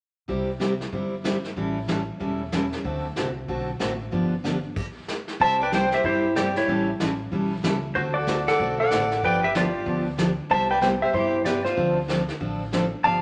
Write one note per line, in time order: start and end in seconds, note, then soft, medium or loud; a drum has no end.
0.28 0.80 C2 medium
0.28 0.49 C3 medium
0.28 0.49 G3 medium
0.28 0.49 C4 medium
0.28 0.49 E4 medium
0.28 0.49 G4 medium
0.28 brush sweep soft
0.28 kick soft
0.60 0.71 C3 medium
0.60 0.71 G3 medium
0.60 0.72 C4 medium
0.60 0.72 E4 medium
0.60 0.72 G4 medium
0.60 snare soft
0.60 hi-hat pedal soft
0.81 snare soft
0.92 1.44 G1 medium
0.92 1.13 C3 soft
0.92 1.13 G3 medium
0.92 1.13 C4 medium
0.92 1.14 E4 medium
0.92 1.14 G4 soft
0.92 brush sweep soft
0.92 kick soft
1.24 1.36 C3 medium
1.24 1.36 G3 medium
1.24 1.36 C4 medium
1.24 1.36 E4 medium
1.24 1.36 G4 medium
1.24 snare medium
1.24 hi-hat pedal medium
1.44 snare soft
1.56 2.08 A1 medium
1.56 1.77 E3 medium
1.56 1.77 G3 medium
1.56 1.78 C#4 medium
1.56 1.78 E4 medium
1.56 1.78 A4 medium
1.56 brush sweep soft
1.56 kick soft
1.88 1.99 E3 medium
1.88 2.00 G3 medium
1.88 2.00 C#4 medium
1.88 2.00 E4 medium
1.88 2.00 A4 medium
1.88 snare medium
1.88 hi-hat pedal medium
2.20 2.72 E1 medium
2.20 2.41 E3 medium
2.20 2.41 G3 medium
2.20 2.41 C#4 soft
2.20 2.41 E4 medium
2.20 2.41 A4 medium
2.20 brush sweep medium
2.20 kick soft
2.52 2.64 E3 medium
2.52 2.64 G3 medium
2.52 2.64 C#4 medium
2.52 2.64 E4 medium
2.52 2.64 A4 medium
2.52 snare medium
2.52 hi-hat pedal soft
2.72 snare soft
2.84 3.10 D2 medium
2.84 3.05 D3 medium
2.84 3.05 A3 medium
2.84 3.05 C4 medium
2.84 3.05 F#4 medium
2.84 3.06 A4 medium
2.84 brush sweep soft
2.84 kick soft
3.16 3.44 C2 medium
3.16 3.28 D3 medium
3.16 3.28 A3 medium
3.16 3.28 C4 medium
3.16 3.28 F#4 medium
3.16 3.28 A4 medium
3.16 snare soft
3.16 hi-hat pedal medium
3.48 3.76 B1 medium
3.48 3.69 D3 soft
3.48 3.69 A3 medium
3.48 3.69 C4 medium
3.48 3.69 F#4 medium
3.48 3.70 A4 medium
3.48 brush sweep soft
3.48 kick soft
3.79 4.08 A1 medium
3.79 3.91 D3 medium
3.79 3.91 A3 medium
3.79 3.91 C4 medium
3.79 3.92 F#4 medium
3.79 3.92 A4 medium
3.79 snare medium
3.79 hi-hat pedal medium
4.11 4.64 G1 medium
4.11 4.33 D3 medium
4.11 4.33 F3 medium
4.11 4.33 B3 medium
4.11 4.33 D4 medium
4.11 4.33 G4 medium
4.11 brush sweep medium
4.11 kick soft
4.44 4.55 D3 medium
4.44 4.55 F3 medium
4.44 4.56 B3 medium
4.44 4.56 D4 medium
4.44 4.56 G4 medium
4.44 snare medium
4.44 hi-hat pedal medium
4.76 brush sweep soft
4.76 kick medium
4.76 crash medium
5.08 snare medium
5.08 hi-hat pedal medium
5.28 snare soft
5.40 5.91 C2 medium
5.40 5.61 C3 medium
5.40 5.61 G3 medium
5.40 5.61 C4 medium
5.40 5.61 E4 medium
5.40 5.61 G4 medium
5.40 5.60 C5 medium
5.40 5.59 E5 medium
5.40 5.61 A5 loud
5.40 brush sweep soft
5.40 kick soft
5.60 5.73 B4 medium
5.60 5.72 D5 medium
5.60 5.73 G5 medium
5.72 5.83 C3 medium
5.72 5.83 G3 medium
5.72 5.83 C4 medium
5.72 5.84 E4 medium
5.72 5.84 G4 medium
5.72 5.91 C5 medium
5.72 5.92 C5 medium
5.72 5.94 G5 medium
5.72 snare medium
5.72 hi-hat pedal soft
5.92 6.04 G4 medium
5.92 6.04 C5 medium
5.92 6.05 E5 medium
5.92 snare soft
6.03 6.55 G2 medium
6.03 6.24 C3 medium
6.03 6.24 G3 medium
6.03 6.25 C4 medium
6.03 6.25 E4 medium
6.03 6.34 E4 medium
6.03 6.34 G4 medium
6.03 6.25 G4 medium
6.03 6.35 C5 medium
6.03 brush sweep soft
6.03 kick soft
6.35 6.47 C3 medium
6.35 6.47 G3 medium
6.35 6.47 C4 medium
6.35 6.47 E4 medium
6.35 6.55 G4 medium
6.35 6.56 G4 medium
6.35 6.48 G4 medium
6.35 6.57 D5 medium
6.35 snare medium
6.35 hi-hat pedal medium
6.56 6.86 E4 medium
6.56 6.88 G4 medium
6.56 6.89 C#5 medium
6.56 snare soft
6.68 6.93 A1 medium
6.68 6.88 E3 medium
6.68 6.89 G3 medium
6.68 6.89 C#4 medium
6.68 6.89 E4 medium
6.68 6.89 A4 medium
6.68 brush sweep soft
6.68 kick soft
7.00 7.27 A1 medium
7.00 7.11 E3 medium
7.00 7.11 G3 medium
7.00 7.11 C#4 medium
7.00 7.11 E4 medium
7.00 7.12 A4 medium
7.00 snare medium
7.00 hi-hat pedal medium
7.32 7.59 B1 medium
7.32 7.52 E3 medium
7.32 7.53 G3 medium
7.32 7.53 C#4 medium
7.32 7.53 E4 medium
7.32 7.53 A4 medium
7.32 brush sweep medium
7.32 kick soft
7.63 7.91 C#2 medium
7.63 7.74 E3 medium
7.63 7.75 G3 medium
7.63 7.75 C#4 medium
7.63 7.75 E4 medium
7.63 7.75 A4 medium
7.63 snare medium
7.63 hi-hat pedal medium
7.95 8.46 D2 medium
7.95 8.16 D3 medium
7.95 8.16 A3 medium
7.95 8.16 C4 medium
7.95 8.04 F#4 medium
7.95 8.01 F#4 medium
7.95 8.16 F#4 medium
7.95 8.16 A4 medium
7.95 8.01 C5 medium
7.95 brush sweep soft
7.95 kick soft
8.14 8.45 F#4 medium
8.14 8.44 A4 medium
8.14 8.47 D5 medium
8.27 8.38 D3 medium
8.27 8.38 A3 medium
8.27 8.38 C4 medium
8.27 8.39 F#4 medium
8.27 8.39 A4 medium
8.27 snare medium
8.27 hi-hat pedal medium
8.47 8.77 A4 medium
8.47 8.76 D5 medium
8.47 8.79 F#5 medium
8.47 snare soft
8.58 8.87 B1 medium
8.58 8.79 D3 soft
8.58 8.80 A3 medium
8.58 8.80 C4 medium
8.58 8.80 F#4 medium
8.58 8.80 A4 medium
8.58 brush sweep soft
8.58 kick soft
8.79 9.21 A4 medium
8.79 9.20 D5 medium
8.79 9.25 F#5 loud
8.91 9.18 A1 medium
8.91 9.02 D3 medium
8.91 9.02 A3 medium
8.91 9.02 C4 medium
8.91 9.02 F#4 medium
8.91 9.03 A4 medium
8.91 snare medium
8.91 hi-hat pedal medium
9.11 snare soft
9.22 9.74 G1 medium
9.22 9.43 D3 medium
9.22 9.43 F3 medium
9.22 9.44 B3 medium
9.22 9.44 D4 medium
9.22 9.44 G4 medium
9.22 9.42 B4 medium
9.22 9.44 D5 medium
9.22 9.44 G5 loud
9.22 brush sweep medium
9.22 kick soft
9.42 9.55 G4 medium
9.42 9.53 B4 medium
9.42 9.56 E5 medium
9.54 9.66 D3 medium
9.54 9.66 F3 medium
9.54 9.66 B3 medium
9.54 9.66 D4 medium
9.54 10.04 F4 medium
9.54 10.02 G4 medium
9.54 9.67 G4 medium
9.54 10.04 D5 medium
9.54 snare medium
9.54 hi-hat pedal medium
9.85 10.38 D2 medium
9.85 10.06 D3 medium
9.85 10.07 F3 medium
9.85 10.07 B3 medium
9.85 10.07 D4 medium
9.85 10.07 G4 medium
9.85 brush sweep medium
9.85 kick soft
10.18 10.29 D3 medium
10.18 10.29 F3 medium
10.18 10.30 B3 medium
10.18 10.30 D4 medium
10.18 10.30 G4 medium
10.18 snare medium
10.18 hi-hat pedal soft
10.50 11.01 C2 medium
10.50 10.70 C3 medium
10.50 10.71 G3 medium
10.50 10.71 B3 medium
10.50 10.71 E4 medium
10.50 10.71 G4 medium
10.50 10.69 C5 medium
10.50 10.69 E5 medium
10.50 10.70 A5 loud
10.50 brush sweep soft
10.50 kick soft
10.71 10.81 B4 medium
10.71 10.80 D5 medium
10.71 10.81 G5 medium
10.81 10.93 C3 medium
10.81 10.93 G3 medium
10.81 10.93 B3 medium
10.81 10.93 E4 medium
10.81 10.93 G4 medium
10.81 10.87 B4 medium
10.81 10.90 C5 medium
10.81 10.87 G5 loud
10.81 snare medium
10.81 hi-hat pedal medium
11.02 11.14 G4 medium
11.02 11.13 C5 medium
11.02 11.15 E5 medium
11.13 11.65 G2 medium
11.13 11.34 C3 medium
11.13 11.34 G3 medium
11.13 11.34 B3 medium
11.13 11.35 E4 medium
11.13 11.44 E4 medium
11.13 11.44 G4 medium
11.13 11.35 G4 medium
11.13 11.45 C5 loud
11.13 brush sweep soft
11.13 kick soft
11.45 11.57 C3 medium
11.45 11.57 G3 medium
11.45 11.57 B3 medium
11.45 11.57 E4 medium
11.45 11.57 G4 medium
11.45 11.64 G4 medium
11.45 11.67 B4 medium
11.45 11.64 D5 medium
11.45 snare medium
11.45 hi-hat pedal medium
11.65 11.97 F4 medium
11.65 11.95 F4 medium
11.65 11.97 C5 medium
11.65 snare soft
11.76 12.29 D2 medium
11.76 11.97 D3 medium
11.76 11.98 F3 medium
11.76 11.98 C4 medium
11.76 11.98 D4 medium
11.76 11.98 A4 medium
11.76 brush sweep medium
11.76 kick soft
12.08 12.20 D3 medium
12.08 12.20 F3 medium
12.08 12.20 C4 medium
12.08 12.20 D4 medium
12.08 12.21 A4 medium
12.08 snare medium
12.08 hi-hat pedal soft
12.29 snare soft
12.40 12.92 A1 medium
12.40 12.61 D3 medium
12.40 12.61 F3 medium
12.40 12.62 C4 medium
12.40 12.62 D4 medium
12.40 12.62 A4 medium
12.40 brush sweep soft
12.40 kick soft
12.72 12.84 D3 medium
12.72 12.84 F3 medium
12.72 12.84 C4 medium
12.72 12.84 D4 medium
12.72 12.85 A4 medium
12.72 snare medium
12.72 hi-hat pedal soft
13.04 13.22 G1 medium
13.04 13.22 D3 medium
13.04 13.22 F3 medium
13.04 13.22 B3 medium
13.04 13.22 D4 medium
13.04 13.22 G4 medium
13.04 13.22 D5 medium
13.04 13.22 F5 medium
13.04 13.22 A5 loud
13.04 brush sweep soft
13.04 kick soft